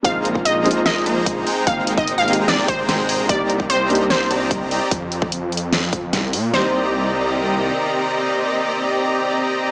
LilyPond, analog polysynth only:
\new Staff \with { instrumentName = "Analog polysynth" } { \time 4/4 \key c \minor \tempo 4 = 148 <bes aes' c'' ees'' bes''>2~ <bes aes' c'' ees'' bes''>8 <bes aes' c'' ees'' bes''>8. <bes aes' c'' ees'' bes''>16 <aes aes' c'' g'' bes''>8 | aes'2 <aes aes' c'' g'' bes''>8. <aes aes' c'' g'' bes''>8 <aes aes' c'' g'' bes''>16 <aes aes' c'' g'' bes''>8 | <c' g' d''>2~ <c' g' d''>8 <c' g' d'' ees'' bes''>8. <c' g' d'' ees'' bes''>16 <c' g' d'' ees'' bes''>8 | r1 |
<c' g' d'' ees'' bes''>1~ | <c' g' d'' ees'' bes''>1 | }